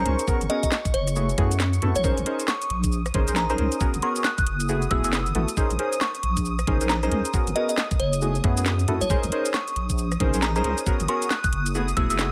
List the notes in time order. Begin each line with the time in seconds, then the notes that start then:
Already playing: C#6
0.06 C#2 C#4 D#4 G#4 A#4 C5, closed hi-hat
0.19 closed hi-hat, shaker
0.28 B3 C#4 F#4 G#4 A#4, kick, shaker
0.41 G#1, closed hi-hat, shaker
0.50 B3 C#4 F#4 G#4 A#4 D#5, closed hi-hat
0.63 D#5, kick, closed hi-hat, shaker
0.72 snare, shaker
0.85 kick, closed hi-hat, shaker
0.94 F#1 C#5, closed hi-hat
1.07 cross-stick, closed hi-hat, shaker
1.16 A3 B3 E4 F#4 G#4, shaker
1.29 closed hi-hat, shaker
1.38 F#2 A3 B3 E4 F#4 G#4, kick, cross-stick, closed hi-hat
1.51 closed hi-hat, shaker
1.60 snare, shaker
1.73 closed hi-hat, shaker
1.82 F#2 A3 B3 E4 F#4 A4, closed hi-hat
1.95 A#1 C#5, closed hi-hat, shaker
2.04 C#4 D#4 G#4 A#4 C5 D#6, kick, shaker
2.17 A#1, closed hi-hat, shaker
2.26 C#4 D#4 G#4 A#4 C5, closed hi-hat
2.40 closed hi-hat, shaker
2.48 C#6, snare, shaker
2.62 closed hi-hat, shaker
2.70 A#1, closed hi-hat
2.84 kick, closed hi-hat, shaker
2.92 shaker
3.06 cross-stick, closed hi-hat, shaker
3.14 G#1 C#4 D#4 G#4 A#4 C5, kick, closed hi-hat
3.28 A#1 C#4 D#4 G#4 A#4 C5, closed hi-hat, shaker
3.36 A#5, snare, shaker
3.50 C#4 D#4 G#4 A#4 C5 A#5, cross-stick, closed hi-hat, shaker
3.58 C#2 C#4 D#4 G#4 A#4 C5, closed hi-hat
3.72 closed hi-hat, shaker
3.80 B3 C#4 F#4 G#4 A#4, kick, shaker
3.94 G#1, closed hi-hat, shaker
4.02 B3 C#4 F#4 G#4 A#4 C#6, closed hi-hat
4.16 closed hi-hat, shaker
4.24 F#6, snare, shaker
4.38 F#6, kick, closed hi-hat, shaker
4.46 F#1, closed hi-hat
4.60 closed hi-hat, shaker
4.69 A3 B3 E4 F#4 G#4, shaker
4.82 closed hi-hat, shaker
4.91 E1 A3 B3 E4 F#4 G#4 E6, kick, cross-stick, closed hi-hat
5.04 F#1 A3 B3 E4 F#4 G#4 E6, closed hi-hat, shaker
5.13 snare, shaker
5.26 closed hi-hat, shaker
5.35 A1 A3 B3 E4 F#4 A4, closed hi-hat
5.48 closed hi-hat, shaker
5.57 C#4 D#4 G#4 A#4 C5, kick, shaker
5.70 A#1, closed hi-hat, shaker
5.79 C#4 D#4 G#4 A#4 C5, closed hi-hat
5.93 closed hi-hat, shaker
6.01 C#6, snare, shaker
6.15 closed hi-hat, shaker
6.23 A#1, closed hi-hat
6.37 kick, closed hi-hat, shaker
6.45 shaker
6.59 cross-stick, closed hi-hat, shaker
6.67 G#1 C#4 D#4 G#4 A#4 C5, kick, closed hi-hat
6.81 A#1 C#4 D#4 G#4 A#4 C5, closed hi-hat, shaker
6.89 A#5, snare, shaker
7.03 C#4 D#4 G#4 A#4 C5 A#5, cross-stick, closed hi-hat, shaker
7.11 C#2 C#4 D#4 G#4 A#4 C5, closed hi-hat
7.25 closed hi-hat, shaker
7.34 B3 C#4 F#4 G#4 A#4, kick, shaker
7.47 G#1, closed hi-hat, shaker
7.56 B3 C#4 F#4 G#4 A#4 D#5, closed hi-hat
7.69 D#5, closed hi-hat, shaker
7.78 snare, shaker
7.91 kick, closed hi-hat, shaker
8.00 F#1 C#5, closed hi-hat
8.13 closed hi-hat, shaker
8.22 A3 B3 E4 F#4 G#4, shaker
8.35 closed hi-hat, shaker
8.44 F#2 A3 B3 E4 F#4 G#4, kick, cross-stick, closed hi-hat
8.57 A3 B3 E4 F#4 G#4, closed hi-hat, shaker
8.66 snare, shaker
8.79 closed hi-hat, shaker
8.88 F#2 A3 B3 E4 F#4 A4, closed hi-hat
9.01 A#1 C#5, closed hi-hat, shaker
9.10 C#4 D#4 G#4 A#4 C5 D#6, kick, shaker
9.23 A#1, closed hi-hat, shaker
9.32 C#4 D#4 G#4 A#4 C5, closed hi-hat
9.46 closed hi-hat, shaker
9.54 C#6, snare, shaker
9.68 closed hi-hat, shaker
9.76 A#1, closed hi-hat
9.90 kick, closed hi-hat, shaker
9.98 shaker
10.12 cross-stick, closed hi-hat, shaker
10.20 G#1 C#4 D#4 G#4 A#4 C5, kick, closed hi-hat
10.34 A#1 C#4 D#4 G#4 A#4 C5, closed hi-hat, shaker
10.42 A#5, snare, shaker
10.56 C#4 D#4 G#4 A#4 C5 A#5, cross-stick, closed hi-hat, shaker
10.64 C#2 C#4 D#4 G#4 A#4 C5, closed hi-hat
10.78 closed hi-hat, shaker
10.86 B3 C#4 F#4 G#4 A#4, kick, shaker
11.00 G#1, closed hi-hat, shaker
11.08 B3 C#4 F#4 G#4 A#4 C#6, closed hi-hat
11.22 closed hi-hat, shaker
11.30 F#6, snare, shaker
11.44 F#6, kick, closed hi-hat, shaker
11.53 F#1, closed hi-hat
11.66 closed hi-hat, shaker
11.75 A3 B3 E4 F#4 G#4, shaker
11.88 closed hi-hat, shaker
11.97 E1 A3 B3 E4 F#4 G#4 E6, kick, cross-stick, closed hi-hat
12.10 F#1 A3 B3 E4 F#4 G#4 E6, closed hi-hat, shaker
12.19 snare, shaker